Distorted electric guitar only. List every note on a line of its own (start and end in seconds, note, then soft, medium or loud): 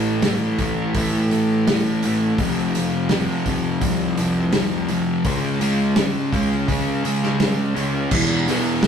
0.00 0.23 A2 medium
0.00 0.23 E3 medium
0.00 0.25 A3 medium
0.24 0.58 A2 medium
0.24 0.59 E3 medium
0.24 0.60 A3 medium
0.59 0.95 A2 loud
0.59 0.95 E3 loud
0.59 0.96 A3 medium
0.96 1.30 A2 medium
0.96 1.31 E3 medium
0.96 1.31 A3 medium
1.31 1.67 A2 medium
1.31 1.68 E3 medium
1.31 1.69 A3 medium
1.68 2.03 A2 medium
1.68 2.04 E3 medium
1.68 2.05 A3 medium
2.04 2.37 A2 medium
2.04 2.37 E3 medium
2.04 2.38 A3 medium
2.39 2.75 F2 loud
2.39 2.76 C3 loud
2.39 2.76 F3 loud
2.77 3.11 F2 medium
2.77 3.11 C3 medium
2.77 3.12 F3 medium
3.12 3.46 F2 medium
3.12 3.47 C3 medium
3.12 3.48 F3 medium
3.47 3.82 F2 medium
3.47 3.83 C3 loud
3.47 3.83 F3 loud
3.83 4.17 F2 medium
3.83 4.18 C3 medium
3.83 4.18 F3 loud
4.19 4.53 F2 medium
4.19 4.53 C3 loud
4.19 4.54 F3 loud
4.54 4.88 F2 medium
4.54 4.89 C3 medium
4.54 4.89 F3 medium
4.89 5.23 F2 medium
4.89 5.24 C3 medium
4.89 5.24 F3 medium
5.25 5.59 C#3 loud
5.25 5.61 G#3 loud
5.25 5.61 C#4 loud
5.60 5.96 C#3 medium
5.60 5.97 G#3 medium
5.60 5.98 C#4 medium
5.98 6.31 C#3 medium
5.98 6.33 G#3 medium
5.98 6.33 C#4 medium
6.32 6.67 C#3 loud
6.32 6.68 G#3 medium
6.32 6.68 C#4 loud
6.68 7.03 C#3 medium
6.68 7.04 G#3 medium
6.68 7.04 C#4 medium
7.04 7.40 C#3 medium
7.04 7.40 G#3 loud
7.04 7.41 C#4 medium
7.41 7.74 C#3 medium
7.41 7.75 G#3 medium
7.41 7.75 C#4 medium
7.75 8.10 C#3 medium
7.75 8.10 G#3 medium
7.75 8.11 C#4 loud
8.12 8.47 E2 loud
8.12 8.47 B2 loud
8.12 8.49 E3 loud
8.48 8.82 E2 medium
8.48 8.83 B2 medium
8.48 8.84 E3 medium
8.84 8.87 E2 medium
8.84 8.87 B2 medium